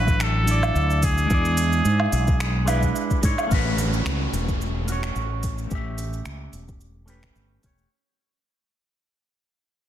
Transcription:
0.00 0.70 A1 loud
0.00 0.42 F#3 loud
0.00 0.44 D4 loud
0.00 0.45 E4 loud
0.00 0.24 B4 loud
0.00 0.46 C#5 loud
0.07 kick loud
0.07 cabasa soft
0.20 1.06 A4 loud
0.20 finger snap medium
0.20 cabasa soft
0.44 1.25 F#3 medium
0.44 1.26 D4 medium
0.44 open hi-hat loud
0.48 1.28 E4 medium
0.48 1.29 D5 loud
0.48 cabasa medium
0.63 cabasa soft
0.63 low woodblock medium
0.75 1.25 D2 loud
0.75 cabasa soft
0.90 cabasa soft
1.03 2.96 G#4 loud
1.03 kick loud
1.03 open hi-hat loud
1.03 cabasa medium
1.18 cabasa soft
1.26 2.63 G#3 medium
1.26 2.64 D4 medium
1.30 1.80 E2 loud
1.30 2.65 E4 medium
1.30 2.67 D5 medium
1.30 kick loud
1.30 cabasa soft
1.45 cabasa soft
1.57 open hi-hat loud
1.57 cabasa medium
1.73 cabasa soft
1.85 2.06 G#2 medium
1.85 cabasa soft
2.00 low woodblock medium
2.12 2.90 B1 loud
2.12 open hi-hat loud
2.12 cabasa medium
2.28 kick loud
2.28 cabasa soft
2.40 finger snap medium
2.40 cabasa soft
2.65 3.19 G#3 loud
2.65 3.19 D4 loud
2.65 3.20 E4 loud
2.65 3.21 B4 loud
2.65 open hi-hat loud
2.65 cabasa medium
2.65 low woodblock medium
2.83 kick medium
2.83 cabasa soft
2.96 cabasa soft
3.11 kick medium
3.11 cabasa soft
3.21 3.34 G#2 loud
3.21 3.46 G#3 medium
3.21 3.47 D4 medium
3.21 3.48 E4 medium
3.21 3.49 C#5 medium
3.21 kick loud
3.21 open hi-hat loud
3.21 cabasa medium
3.38 cabasa soft
3.38 low woodblock medium
3.47 4.83 A3 loud
3.47 4.84 C#4 medium
3.47 downlifter medium
3.51 4.01 A1 loud
3.51 4.86 F#4 medium
3.51 4.87 B4 loud
3.51 kick loud
3.51 cabasa soft
3.78 open hi-hat medium
3.78 cabasa medium
3.93 cabasa soft
4.05 4.27 C#2 medium
4.05 finger snap medium
4.05 cabasa soft
4.33 5.10 E1 medium
4.33 open hi-hat medium
4.33 cabasa medium
4.49 kick medium
4.49 cabasa soft
4.61 cabasa soft
4.84 5.66 A3 medium
4.84 5.67 C#4 medium
4.84 open hi-hat medium
4.88 5.68 F#4 medium
4.88 5.70 C#5 medium
4.88 cabasa medium
5.03 finger snap medium
5.03 cabasa soft
5.16 5.66 A1 medium
5.16 cabasa soft
5.43 kick loud
5.43 open hi-hat medium
5.43 cabasa medium
5.58 cabasa soft
5.67 6.21 A1 medium
5.67 7.04 A3 medium
5.67 7.05 C#4 medium
5.67 cabasa soft
5.71 7.06 G4 medium
5.71 7.08 E5 medium
5.71 kick loud
5.98 open hi-hat medium
5.98 cabasa medium
6.13 cabasa soft
6.26 6.47 C#2 medium
6.26 finger snap medium
6.26 cabasa soft
6.53 7.30 E1 medium
6.53 open hi-hat medium
6.53 cabasa medium
6.68 kick loud
6.68 cabasa soft
6.81 cabasa soft
7.06 7.59 A3 medium
7.06 7.60 C#4 medium
7.06 7.60 G4 medium
7.06 open hi-hat medium
7.06 cabasa medium
7.10 7.61 B4 loud
7.23 finger snap medium
7.23 kick medium
7.23 cabasa soft
7.36 7.57 G1 medium
7.36 cabasa soft
7.61 7.85 E1 medium
7.61 7.87 A3 medium
7.61 7.88 C#4 medium
7.61 7.88 G4 medium
7.61 kick medium
7.61 open hi-hat medium
7.61 cabasa medium
7.66 7.89 C#5 medium
7.78 cabasa soft

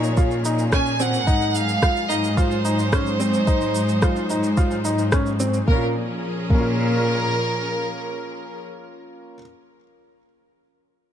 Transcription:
0.00 1.24 A#2 medium
0.00 1.27 F3 medium
0.00 1.27 C#4 medium
0.00 5.67 G#4 medium
0.00 3.03 A#4 medium
0.00 0.45 C#5 loud
0.00 shaker soft
0.17 0.33 F4 medium
0.17 kick loud
0.17 shaker soft
0.31 shaker soft
0.45 0.61 D#4 medium
0.45 shaker medium
0.59 shaker soft
0.72 0.89 C#4 medium
0.72 0.98 G#5 loud
0.72 kick loud
0.72 cross-stick loud
0.72 shaker soft
0.86 shaker soft
1.00 1.16 C4 medium
1.00 1.55 F#5 loud
1.00 shaker medium
1.14 shaker soft
1.27 5.65 G#2 medium
1.27 5.68 F#3 medium
1.27 1.59 D#4 loud
1.27 kick loud
1.27 shaker soft
1.42 shaker soft
1.55 2.10 F5 loud
1.55 shaker medium
1.69 5.67 D#4 medium
1.69 shaker soft
1.82 1.98 F4 medium
1.82 kick loud
1.82 cross-stick medium
1.82 shaker soft
1.97 shaker soft
2.10 2.26 D#4 medium
2.10 2.38 D#5 loud
2.10 shaker medium
2.24 shaker soft
2.37 2.53 F4 loud
2.37 5.13 C5 loud
2.37 kick loud
2.37 shaker soft
2.51 shaker soft
2.65 2.81 D#4 medium
2.65 shaker medium
2.77 5.68 C5 medium
2.77 shaker soft
2.92 3.08 C#4 medium
2.92 kick loud
2.92 cross-stick loud
2.92 shaker soft
3.07 shaker soft
3.20 3.36 C4 medium
3.20 shaker medium
3.34 shaker soft
3.47 3.79 D#4 loud
3.47 kick loud
3.47 shaker soft
3.61 shaker soft
3.75 shaker medium
3.89 shaker soft
4.02 4.18 F4 medium
4.02 kick loud
4.02 cross-stick medium
4.02 shaker soft
4.16 shaker soft
4.30 4.46 D#4 medium
4.30 shaker medium
4.44 shaker soft
4.57 4.73 F4 medium
4.57 kick loud
4.57 shaker soft
4.71 shaker soft
4.85 5.01 D#4 medium
4.85 shaker medium
4.99 shaker soft
5.12 5.28 C#4 medium
5.12 kick loud
5.12 cross-stick loud
5.12 shaker soft
5.26 shaker soft
5.40 5.56 C4 medium
5.40 shaker medium
5.54 shaker soft
5.67 5.83 A#2 loud
5.67 8.64 F3 medium
5.67 5.83 A#3 medium
5.67 5.83 A#4 loud
5.67 kick loud
5.72 5.85 C#4 medium
5.72 5.87 F4 medium
5.76 8.64 C#4 medium
5.76 5.89 A#4 medium
5.84 8.64 G#4 medium
5.92 8.64 A#4 medium
6.50 7.29 A#2 loud
6.50 9.34 A#3 medium
6.50 8.64 A#4 loud
6.50 kick loud
6.54 9.36 C#4 medium
6.54 9.38 F4 medium
6.62 9.40 A#4 medium

